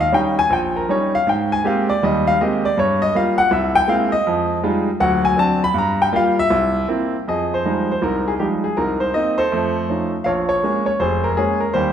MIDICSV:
0, 0, Header, 1, 2, 480
1, 0, Start_track
1, 0, Key_signature, -4, "minor"
1, 0, Tempo, 375469
1, 1624, Time_signature, 4, 2, 24, 8
1, 15246, End_track
2, 0, Start_track
2, 0, Title_t, "Grand piano"
2, 0, Program_c, 0, 0
2, 7, Note_on_c, 0, 77, 106
2, 158, Note_on_c, 0, 55, 62
2, 158, Note_on_c, 0, 61, 56
2, 163, Note_off_c, 0, 77, 0
2, 170, Note_on_c, 0, 63, 65
2, 184, Note_on_c, 0, 79, 92
2, 479, Note_off_c, 0, 79, 0
2, 493, Note_off_c, 0, 55, 0
2, 493, Note_off_c, 0, 61, 0
2, 496, Note_on_c, 0, 80, 123
2, 499, Note_off_c, 0, 63, 0
2, 640, Note_on_c, 0, 34, 76
2, 652, Note_off_c, 0, 80, 0
2, 676, Note_on_c, 0, 79, 92
2, 971, Note_off_c, 0, 79, 0
2, 978, Note_on_c, 0, 70, 76
2, 1067, Note_off_c, 0, 34, 0
2, 1138, Note_off_c, 0, 70, 0
2, 1138, Note_on_c, 0, 55, 57
2, 1139, Note_on_c, 0, 61, 52
2, 1143, Note_on_c, 0, 63, 62
2, 1159, Note_on_c, 0, 73, 81
2, 1456, Note_off_c, 0, 73, 0
2, 1469, Note_on_c, 0, 77, 103
2, 1471, Note_off_c, 0, 55, 0
2, 1472, Note_off_c, 0, 61, 0
2, 1474, Note_off_c, 0, 63, 0
2, 1621, Note_on_c, 0, 44, 72
2, 1626, Note_off_c, 0, 77, 0
2, 1653, Note_on_c, 0, 79, 80
2, 1943, Note_off_c, 0, 79, 0
2, 1947, Note_on_c, 0, 80, 106
2, 2039, Note_off_c, 0, 44, 0
2, 2100, Note_on_c, 0, 56, 60
2, 2105, Note_off_c, 0, 80, 0
2, 2105, Note_on_c, 0, 58, 55
2, 2109, Note_on_c, 0, 60, 61
2, 2110, Note_on_c, 0, 67, 68
2, 2133, Note_on_c, 0, 77, 81
2, 2421, Note_off_c, 0, 77, 0
2, 2422, Note_on_c, 0, 74, 99
2, 2431, Note_off_c, 0, 56, 0
2, 2433, Note_off_c, 0, 58, 0
2, 2435, Note_off_c, 0, 60, 0
2, 2435, Note_off_c, 0, 67, 0
2, 2581, Note_off_c, 0, 74, 0
2, 2590, Note_on_c, 0, 39, 75
2, 2598, Note_on_c, 0, 55, 81
2, 2611, Note_on_c, 0, 75, 87
2, 2901, Note_off_c, 0, 75, 0
2, 2907, Note_on_c, 0, 77, 117
2, 3002, Note_off_c, 0, 39, 0
2, 3006, Note_off_c, 0, 55, 0
2, 3064, Note_off_c, 0, 77, 0
2, 3081, Note_on_c, 0, 56, 54
2, 3082, Note_on_c, 0, 75, 74
2, 3083, Note_on_c, 0, 58, 54
2, 3088, Note_on_c, 0, 60, 57
2, 3096, Note_on_c, 0, 67, 61
2, 3374, Note_off_c, 0, 75, 0
2, 3390, Note_on_c, 0, 74, 98
2, 3399, Note_off_c, 0, 56, 0
2, 3400, Note_off_c, 0, 58, 0
2, 3403, Note_off_c, 0, 60, 0
2, 3407, Note_off_c, 0, 67, 0
2, 3543, Note_off_c, 0, 74, 0
2, 3547, Note_on_c, 0, 43, 72
2, 3570, Note_on_c, 0, 73, 92
2, 3854, Note_off_c, 0, 73, 0
2, 3860, Note_on_c, 0, 75, 100
2, 3953, Note_off_c, 0, 43, 0
2, 4014, Note_off_c, 0, 75, 0
2, 4030, Note_on_c, 0, 55, 63
2, 4030, Note_on_c, 0, 58, 58
2, 4039, Note_on_c, 0, 65, 66
2, 4044, Note_on_c, 0, 77, 94
2, 4320, Note_on_c, 0, 78, 112
2, 4326, Note_off_c, 0, 77, 0
2, 4344, Note_off_c, 0, 55, 0
2, 4344, Note_off_c, 0, 58, 0
2, 4348, Note_off_c, 0, 65, 0
2, 4479, Note_off_c, 0, 78, 0
2, 4488, Note_on_c, 0, 36, 78
2, 4504, Note_on_c, 0, 76, 78
2, 4792, Note_off_c, 0, 76, 0
2, 4800, Note_on_c, 0, 79, 127
2, 4896, Note_off_c, 0, 36, 0
2, 4956, Note_off_c, 0, 79, 0
2, 4957, Note_on_c, 0, 56, 60
2, 4960, Note_on_c, 0, 58, 53
2, 4972, Note_on_c, 0, 64, 68
2, 4976, Note_on_c, 0, 60, 54
2, 4977, Note_on_c, 0, 77, 93
2, 5267, Note_off_c, 0, 77, 0
2, 5269, Note_on_c, 0, 75, 101
2, 5283, Note_off_c, 0, 56, 0
2, 5284, Note_off_c, 0, 58, 0
2, 5290, Note_off_c, 0, 64, 0
2, 5292, Note_off_c, 0, 60, 0
2, 5454, Note_on_c, 0, 41, 76
2, 5854, Note_off_c, 0, 41, 0
2, 5863, Note_off_c, 0, 75, 0
2, 5925, Note_on_c, 0, 56, 59
2, 5926, Note_on_c, 0, 55, 65
2, 5930, Note_on_c, 0, 65, 67
2, 5933, Note_on_c, 0, 63, 60
2, 6242, Note_off_c, 0, 55, 0
2, 6242, Note_off_c, 0, 56, 0
2, 6244, Note_off_c, 0, 65, 0
2, 6246, Note_off_c, 0, 63, 0
2, 6395, Note_on_c, 0, 38, 84
2, 6397, Note_on_c, 0, 54, 81
2, 6398, Note_on_c, 0, 78, 97
2, 6691, Note_off_c, 0, 78, 0
2, 6709, Note_on_c, 0, 80, 109
2, 6802, Note_off_c, 0, 38, 0
2, 6803, Note_off_c, 0, 54, 0
2, 6861, Note_on_c, 0, 54, 56
2, 6864, Note_off_c, 0, 80, 0
2, 6868, Note_on_c, 0, 60, 54
2, 6873, Note_on_c, 0, 62, 67
2, 6892, Note_on_c, 0, 81, 105
2, 7182, Note_off_c, 0, 81, 0
2, 7192, Note_off_c, 0, 54, 0
2, 7195, Note_off_c, 0, 60, 0
2, 7198, Note_off_c, 0, 62, 0
2, 7210, Note_on_c, 0, 83, 123
2, 7340, Note_on_c, 0, 43, 79
2, 7356, Note_off_c, 0, 83, 0
2, 7393, Note_on_c, 0, 82, 90
2, 7674, Note_off_c, 0, 82, 0
2, 7693, Note_on_c, 0, 79, 104
2, 7759, Note_off_c, 0, 43, 0
2, 7832, Note_on_c, 0, 55, 64
2, 7835, Note_on_c, 0, 58, 66
2, 7836, Note_on_c, 0, 65, 80
2, 7839, Note_off_c, 0, 79, 0
2, 7875, Note_on_c, 0, 77, 97
2, 8157, Note_off_c, 0, 77, 0
2, 8161, Note_off_c, 0, 55, 0
2, 8163, Note_off_c, 0, 58, 0
2, 8163, Note_off_c, 0, 65, 0
2, 8174, Note_on_c, 0, 76, 113
2, 8315, Note_on_c, 0, 36, 81
2, 8741, Note_off_c, 0, 36, 0
2, 8777, Note_off_c, 0, 76, 0
2, 8801, Note_on_c, 0, 58, 60
2, 8801, Note_on_c, 0, 60, 58
2, 8813, Note_on_c, 0, 64, 61
2, 9141, Note_off_c, 0, 58, 0
2, 9141, Note_off_c, 0, 60, 0
2, 9147, Note_off_c, 0, 64, 0
2, 9302, Note_on_c, 0, 41, 55
2, 9314, Note_on_c, 0, 75, 81
2, 9317, Note_on_c, 0, 68, 54
2, 9629, Note_off_c, 0, 75, 0
2, 9639, Note_on_c, 0, 72, 79
2, 9717, Note_off_c, 0, 41, 0
2, 9777, Note_on_c, 0, 53, 48
2, 9786, Note_on_c, 0, 55, 46
2, 9787, Note_on_c, 0, 63, 55
2, 9792, Note_on_c, 0, 56, 49
2, 10100, Note_off_c, 0, 72, 0
2, 10109, Note_off_c, 0, 53, 0
2, 10113, Note_off_c, 0, 55, 0
2, 10114, Note_off_c, 0, 63, 0
2, 10116, Note_off_c, 0, 56, 0
2, 10119, Note_on_c, 0, 72, 73
2, 10221, Note_off_c, 0, 68, 0
2, 10253, Note_on_c, 0, 36, 67
2, 10264, Note_off_c, 0, 72, 0
2, 10270, Note_on_c, 0, 70, 81
2, 10276, Note_on_c, 0, 63, 54
2, 10581, Note_on_c, 0, 68, 69
2, 10588, Note_off_c, 0, 70, 0
2, 10645, Note_off_c, 0, 68, 0
2, 10673, Note_off_c, 0, 36, 0
2, 10725, Note_off_c, 0, 63, 0
2, 10731, Note_on_c, 0, 67, 67
2, 10732, Note_on_c, 0, 53, 49
2, 10739, Note_on_c, 0, 55, 44
2, 10742, Note_on_c, 0, 56, 44
2, 10744, Note_on_c, 0, 63, 49
2, 10802, Note_off_c, 0, 67, 0
2, 11046, Note_on_c, 0, 68, 68
2, 11064, Note_off_c, 0, 53, 0
2, 11068, Note_off_c, 0, 55, 0
2, 11069, Note_off_c, 0, 56, 0
2, 11071, Note_off_c, 0, 63, 0
2, 11211, Note_on_c, 0, 70, 78
2, 11221, Note_off_c, 0, 68, 0
2, 11223, Note_on_c, 0, 36, 58
2, 11227, Note_on_c, 0, 63, 59
2, 11503, Note_off_c, 0, 70, 0
2, 11508, Note_on_c, 0, 72, 78
2, 11632, Note_off_c, 0, 36, 0
2, 11672, Note_off_c, 0, 72, 0
2, 11686, Note_on_c, 0, 75, 88
2, 11690, Note_off_c, 0, 63, 0
2, 11699, Note_on_c, 0, 58, 55
2, 11707, Note_on_c, 0, 60, 48
2, 11709, Note_on_c, 0, 63, 58
2, 11977, Note_off_c, 0, 75, 0
2, 11989, Note_on_c, 0, 72, 98
2, 11999, Note_on_c, 0, 69, 65
2, 12022, Note_off_c, 0, 58, 0
2, 12026, Note_off_c, 0, 60, 0
2, 12026, Note_off_c, 0, 63, 0
2, 12169, Note_on_c, 0, 41, 62
2, 12171, Note_on_c, 0, 57, 73
2, 12580, Note_off_c, 0, 41, 0
2, 12581, Note_off_c, 0, 57, 0
2, 12640, Note_on_c, 0, 53, 46
2, 12647, Note_on_c, 0, 57, 42
2, 12651, Note_on_c, 0, 61, 41
2, 12659, Note_on_c, 0, 63, 53
2, 12896, Note_off_c, 0, 72, 0
2, 12902, Note_off_c, 0, 69, 0
2, 12969, Note_off_c, 0, 53, 0
2, 12972, Note_off_c, 0, 57, 0
2, 12975, Note_off_c, 0, 61, 0
2, 12978, Note_off_c, 0, 63, 0
2, 13095, Note_on_c, 0, 77, 83
2, 13116, Note_on_c, 0, 34, 65
2, 13116, Note_on_c, 0, 73, 69
2, 13168, Note_off_c, 0, 77, 0
2, 13389, Note_off_c, 0, 73, 0
2, 13408, Note_on_c, 0, 73, 91
2, 13531, Note_off_c, 0, 34, 0
2, 13594, Note_on_c, 0, 56, 53
2, 13603, Note_on_c, 0, 58, 49
2, 13608, Note_on_c, 0, 61, 62
2, 13863, Note_off_c, 0, 73, 0
2, 13886, Note_on_c, 0, 73, 83
2, 13924, Note_off_c, 0, 56, 0
2, 13928, Note_off_c, 0, 58, 0
2, 13931, Note_off_c, 0, 61, 0
2, 14059, Note_on_c, 0, 72, 81
2, 14062, Note_on_c, 0, 29, 73
2, 14069, Note_off_c, 0, 73, 0
2, 14081, Note_on_c, 0, 68, 64
2, 14368, Note_on_c, 0, 70, 83
2, 14387, Note_off_c, 0, 72, 0
2, 14481, Note_off_c, 0, 29, 0
2, 14518, Note_off_c, 0, 68, 0
2, 14537, Note_on_c, 0, 68, 85
2, 14549, Note_on_c, 0, 56, 48
2, 14550, Note_off_c, 0, 70, 0
2, 14552, Note_on_c, 0, 58, 42
2, 14553, Note_on_c, 0, 61, 58
2, 14834, Note_on_c, 0, 70, 75
2, 14836, Note_off_c, 0, 68, 0
2, 14881, Note_off_c, 0, 56, 0
2, 14883, Note_off_c, 0, 58, 0
2, 14883, Note_off_c, 0, 61, 0
2, 15002, Note_on_c, 0, 72, 89
2, 15019, Note_on_c, 0, 55, 61
2, 15022, Note_on_c, 0, 39, 67
2, 15025, Note_off_c, 0, 70, 0
2, 15032, Note_on_c, 0, 67, 54
2, 15246, Note_off_c, 0, 39, 0
2, 15246, Note_off_c, 0, 55, 0
2, 15246, Note_off_c, 0, 67, 0
2, 15246, Note_off_c, 0, 72, 0
2, 15246, End_track
0, 0, End_of_file